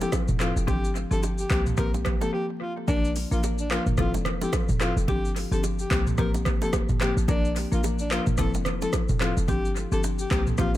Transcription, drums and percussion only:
0.01 low bongo, shaker
0.12 kick, cross-stick, high bongo, shaker
0.28 mid tom, shaker
0.40 cross-stick, clap, high bongo, shaker
0.57 shaker
0.68 kick, low conga, shaker
0.84 shaker
0.95 low bongo, shaker
1.11 shaker
1.23 high bongo, shaker
1.38 shaker
1.50 kick, cross-stick, clap
1.66 mid tom, shaker
1.77 kick, cross-stick, low conga, shaker
1.94 low bongo, shaker
2.05 kick, cross-stick, low conga, shaker
2.21 low bongo, shaker
2.88 kick, low conga, shaker
3.05 shaker
3.16 open hi-hat, low bongo, shaker
3.32 shaker
3.43 high bongo, shaker
3.58 shaker
3.71 cross-stick, clap
3.87 mid tom, shaker
3.97 kick, cross-stick, low conga, shaker
4.14 low bongo, shaker
4.25 cross-stick, low conga, shaker
4.42 low bongo, shaker
4.53 kick, cross-stick, high bongo, shaker
4.69 mid tom, shaker
4.81 cross-stick, clap, high bongo, shaker
4.97 shaker
5.08 kick, low conga, shaker
5.25 shaker
5.36 open hi-hat, low bongo, shaker
5.52 shaker
5.64 high bongo, shaker
5.79 shaker
5.91 kick, cross-stick, clap
6.07 mid tom, shaker
6.18 kick, cross-stick, low conga, shaker
6.34 low bongo, shaker
6.45 kick, cross-stick, low conga, shaker
6.62 low bongo, shaker
6.73 kick, cross-stick, high bongo, shaker
6.89 mid tom, shaker
7.01 cross-stick, clap, high bongo, shaker
7.17 shaker
7.28 kick, low conga, shaker
7.45 shaker
7.56 open hi-hat, low bongo, shaker
7.72 shaker
7.84 high bongo, shaker
7.99 shaker
8.11 cross-stick, clap
8.27 mid tom, shaker
8.37 kick, cross-stick, low conga, shaker
8.54 low bongo, shaker
8.65 cross-stick, low conga, shaker
8.82 low bongo, shaker
8.93 kick, cross-stick, high bongo, shaker
9.09 mid tom, shaker
9.21 cross-stick, clap, high bongo, shaker
9.37 shaker
9.48 kick, low conga, shaker
9.65 shaker
9.76 low bongo, shaker
9.92 shaker
10.03 high bongo, shaker
10.19 shaker
10.31 kick, cross-stick, clap
10.47 mid tom, shaker
10.58 kick, cross-stick, low conga, shaker

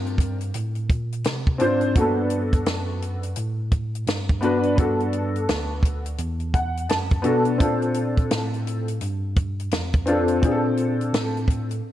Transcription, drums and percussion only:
0.06 closed hi-hat
0.18 kick, closed hi-hat
0.41 closed hi-hat
0.54 closed hi-hat
0.75 closed hi-hat
0.90 kick, closed hi-hat
1.12 closed hi-hat
1.24 snare, closed hi-hat
1.47 kick
1.60 closed hi-hat
1.81 closed hi-hat
1.95 kick, closed hi-hat
2.30 closed hi-hat
2.53 kick, closed hi-hat
2.66 snare, closed hi-hat
3.02 closed hi-hat
3.23 closed hi-hat
3.36 closed hi-hat
3.71 kick, closed hi-hat
3.95 closed hi-hat
4.07 snare, closed hi-hat
4.29 kick, closed hi-hat
4.42 closed hi-hat
4.63 closed hi-hat
4.78 kick, closed hi-hat
5.00 closed hi-hat
5.13 closed hi-hat
5.36 closed hi-hat
5.49 snare, closed hi-hat
5.83 kick, closed hi-hat
6.06 closed hi-hat
6.18 closed hi-hat
6.40 closed hi-hat
6.54 kick, closed hi-hat
6.77 closed hi-hat
6.89 snare, closed hi-hat
7.10 kick, closed hi-hat
7.24 closed hi-hat
7.45 closed hi-hat
7.60 kick, closed hi-hat
7.82 closed hi-hat
7.94 closed hi-hat
8.17 kick, closed hi-hat
8.31 snare, closed hi-hat
8.54 closed hi-hat
8.67 closed hi-hat
8.88 closed hi-hat
9.01 closed hi-hat
9.36 kick, closed hi-hat
9.59 closed hi-hat
9.71 snare, closed hi-hat
9.93 kick, closed hi-hat
10.07 closed hi-hat
10.28 closed hi-hat
10.43 kick, closed hi-hat
10.77 closed hi-hat
11.01 closed hi-hat
11.14 snare, closed hi-hat
11.37 closed hi-hat
11.48 kick, closed hi-hat
11.71 closed hi-hat

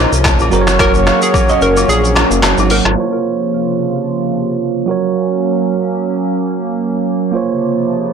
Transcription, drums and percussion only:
0.13 shaker
0.25 finger snap, kick, cross-stick, clap, low woodblock, shaker
0.39 high agogo, shaker
0.52 shaker
0.67 finger snap, cross-stick, shaker
0.79 finger snap, kick, cross-stick, high agogo, shaker
0.94 shaker
1.07 finger snap, cross-stick, shaker
1.22 shaker
1.34 kick, high agogo, shaker
1.49 shaker
1.61 shaker
1.77 high agogo, shaker
1.89 shaker
2.04 shaker
2.15 finger snap, cross-stick, high agogo, shaker
2.31 shaker
2.43 finger snap, cross-stick, clap, low woodblock, shaker
2.58 high agogo, shaker
2.70 open hi-hat, shaker
2.85 finger snap, cross-stick, shaker

